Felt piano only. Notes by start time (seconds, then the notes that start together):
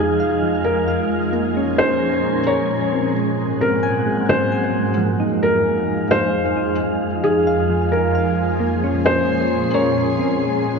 Already playing: G#4
0.65 A#4
1.78 C5
2.47 C#5
3.61 A#4
4.29 C5
5.43 A#4
6.11 C5
7.24 G#4
7.92 A#4
9.06 C5
9.74 C#5